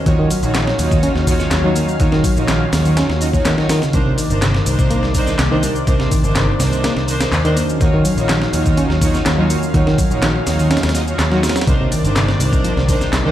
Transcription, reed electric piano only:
0.06 0.18 D#3 medium
0.19 0.29 D#3 medium
0.30 0.40 F#3 medium
0.55 0.67 D#3 medium
0.91 1.03 D#3 medium
1.03 1.13 C#4 loud
1.64 1.75 F#3 loud
1.76 1.88 A#3 medium
2.00 2.12 D#3 medium
2.13 2.23 D#3 medium
2.24 2.34 F#3 medium
2.49 2.60 D#3 medium
2.86 2.96 D#3 medium
2.97 3.07 C#4 loud
3.45 3.55 D#3 loud
3.58 3.67 D#3 medium
3.70 3.81 D#3 loud
3.83 3.91 C#3 medium
3.94 4.05 C3 medium
4.07 4.17 C3 medium
4.18 4.28 D#3 medium
4.42 4.54 C3 medium
4.79 4.90 C3 medium
4.91 5.00 A#3 loud
5.51 5.62 D#3 loud
5.63 5.75 G3 medium
5.87 5.99 C3 medium
6.00 6.10 C3 medium
6.11 6.21 D#3 medium
6.36 6.48 C3 medium
6.72 6.83 C3 medium
6.84 6.94 A#3 loud
7.45 7.56 D#3 loud
7.57 7.68 A#3 medium
7.81 7.92 D#3 medium
7.94 8.04 D#3 medium
8.05 8.15 F#3 medium
8.29 8.41 D#3 medium
8.66 8.77 D#3 medium
8.78 8.87 C#4 loud
9.38 9.50 F#3 loud
9.50 9.62 A#3 medium
9.74 9.86 D#3 medium
9.87 9.97 D#3 medium
9.99 10.08 F#3 medium
10.23 10.35 D#3 medium
10.60 10.71 D#3 medium
10.71 10.81 C#4 loud
11.32 11.43 F#3 loud
11.44 11.56 A#3 medium
11.68 11.79 C3 medium
11.81 11.91 C3 medium
11.92 12.02 D#3 medium
12.16 12.28 C3 medium
12.53 12.64 C3 medium
12.64 12.74 F3 medium
13.25 13.32 D#3 loud

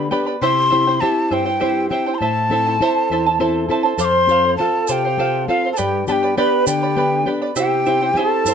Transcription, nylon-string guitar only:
0.00 0.10 D3 medium
0.00 0.10 D4 soft
0.00 0.11 G4 medium
0.11 0.35 B3 soft
0.11 0.35 D4 soft
0.11 0.36 G4 medium
0.42 0.99 C3 medium
0.72 1.00 C4 soft
0.72 1.01 E4 soft
0.72 1.01 G4 medium
1.01 1.49 C4 soft
1.01 1.49 E4 soft
1.01 1.49 G4 medium
1.31 1.89 G2 medium
1.62 1.90 C4 soft
1.62 1.89 E4 soft
1.62 1.90 G4 medium
1.91 2.14 C4 soft
1.91 2.14 E4 soft
1.91 2.15 G4 medium
2.21 2.78 A2 medium
2.50 2.79 C4 soft
2.50 2.79 E4 soft
2.50 2.79 A4 medium
2.80 3.28 C4 soft
2.80 3.28 E4 soft
2.80 3.28 A4 soft
3.10 3.68 E2 medium
3.40 3.68 C4 soft
3.40 3.67 E4 soft
3.40 3.68 A4 medium
3.69 3.93 C4 soft
3.69 3.93 E4 soft
3.69 3.93 A4 soft
3.98 4.56 F2 medium
4.27 4.58 C4 medium
4.27 4.59 F4 soft
4.27 4.59 A4 medium
4.59 5.07 C4 soft
4.59 5.07 F4 soft
4.59 5.07 A4 medium
4.89 5.47 C3 medium
5.17 5.47 C4 medium
5.17 5.47 F4 soft
5.17 5.47 A4 medium
5.48 5.72 C4 soft
5.48 5.72 F4 soft
5.48 5.72 A4 medium
5.79 6.36 G2 medium
6.08 6.36 B3 medium
6.08 6.37 D4 soft
6.08 6.37 G4 medium
6.38 6.85 B3 soft
6.38 6.86 D4 soft
6.38 6.85 G4 medium
6.67 7.25 D3 medium
6.96 7.25 B3 medium
6.96 7.25 D4 soft
6.96 7.26 G4 medium
7.26 7.50 B3 soft
7.26 7.50 D4 soft
7.26 7.51 G4 medium
7.56 8.14 C3 medium
7.86 8.13 C4 soft
7.86 8.13 E4 soft
7.86 8.14 G4 medium
8.14 8.54 C4 soft
8.14 8.54 E4 soft
8.14 8.54 G4 medium
8.45 8.54 G2 medium

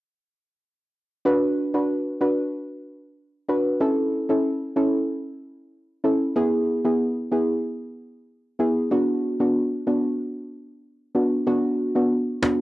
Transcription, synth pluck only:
1.25 1.70 D4 medium
1.25 1.70 F#4 medium
1.25 1.70 B4 loud
1.74 1.93 D4 medium
1.74 1.93 F#4 medium
1.74 1.94 B4 medium
2.21 2.42 D4 medium
2.21 2.42 F#4 medium
2.21 2.42 B4 medium
3.49 3.69 D4 medium
3.49 3.69 F#4 medium
3.49 3.70 B4 medium
3.80 4.25 C#4 medium
3.80 4.25 E4 medium
3.80 4.26 A4 loud
4.29 4.49 C#4 medium
4.29 4.49 E4 medium
4.29 4.49 A4 medium
4.76 4.97 C#4 medium
4.76 4.97 E4 medium
4.76 4.97 A4 medium
6.04 6.25 C#4 medium
6.04 6.25 E4 medium
6.04 6.25 A4 medium
6.36 6.81 B3 medium
6.36 6.81 E4 medium
6.36 6.81 G#4 loud
6.85 7.04 B3 medium
6.85 7.04 E4 medium
6.85 7.04 G#4 medium
7.32 7.52 B3 medium
7.32 7.52 E4 medium
7.32 7.53 G#4 medium
8.59 8.80 B3 medium
8.59 8.80 E4 medium
8.59 8.80 G#4 medium
8.91 9.36 B3 medium
8.91 9.36 D4 medium
8.91 9.36 F#4 loud
9.40 9.59 B3 medium
9.40 9.59 D4 medium
9.40 9.60 F#4 medium
9.87 10.08 B3 medium
9.87 10.08 D4 medium
9.87 10.08 F#4 medium
11.15 11.35 B3 medium
11.15 11.36 D4 medium
11.15 11.36 F#4 medium
11.47 11.91 B3 medium
11.47 11.92 D4 medium
11.47 11.92 F#4 loud
11.95 12.15 B3 medium
11.95 12.15 D4 medium
11.95 12.15 F#4 medium
12.42 12.61 B3 medium
12.42 12.61 D4 medium
12.42 12.61 F#4 medium

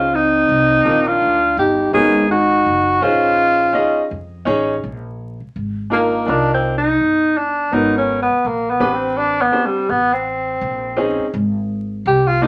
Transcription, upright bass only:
0.00 0.45 C#2 medium
0.49 0.83 C2 loud
0.85 1.19 A#1 medium
1.21 1.56 D2 medium
1.57 1.92 G1 loud
1.93 2.62 G#1 loud
2.66 3.00 F#1 loud
3.02 3.71 A#1 medium
4.11 4.45 F2 medium
4.47 4.81 A1 loud
4.83 5.37 A#1 medium
5.41 muted upright bass stroke soft
5.56 6.24 G#1 medium
6.28 6.96 C2 loud
7.00 7.69 G1 medium
7.73 8.27 G#1 medium
8.30 muted upright bass stroke medium
8.45 8.79 A#1 medium
8.80 9.49 A1 medium
9.89 10.58 A1 medium
10.61 11.15 A#1 medium
11.18 muted upright bass stroke medium
11.34 12.02 G#1 loud
12.06 12.47 C2 loud

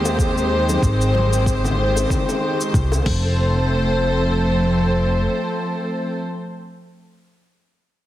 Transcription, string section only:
0.00 3.02 D#3 medium
0.00 3.02 G#3 medium
0.00 3.02 C4 medium
0.00 3.02 G4 medium
0.00 3.02 C5 medium
3.06 6.18 F3 medium
3.06 6.18 A3 medium
3.06 6.19 C4 medium
3.06 6.18 A4 medium
3.06 6.18 C5 medium

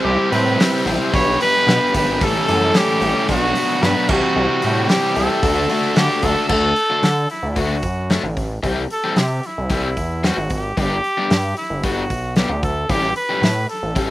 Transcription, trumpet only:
0.04 0.30 G4 loud
0.32 0.82 B4 loud
1.14 1.39 C#5 loud
1.42 1.92 B4 loud
1.96 2.25 B4 medium
2.24 2.79 A4 loud
2.77 3.29 G4 loud
3.30 3.85 F#4 loud
3.83 4.12 B4 loud
4.10 4.91 F#4 medium
4.89 5.17 G4 medium
5.15 5.96 A4 medium
5.97 6.26 G4 loud
6.24 6.48 A4 loud
6.49 7.26 A4 loud
7.31 7.50 E4 medium
7.50 7.59 E4 medium
7.58 8.11 F#4 medium
8.92 9.20 A4 medium
9.19 9.48 G4 medium
9.46 9.72 E4 medium
9.73 10.22 E4 medium
10.26 10.55 F#4 medium
10.53 10.79 G4 medium
10.80 11.54 G4 loud
11.58 11.86 E4 medium
11.84 12.36 F#4 medium
12.37 12.62 G4 medium
12.64 12.92 A4 medium
12.90 13.16 G4 loud
13.17 13.66 B4 loud
13.70 14.10 A4 medium

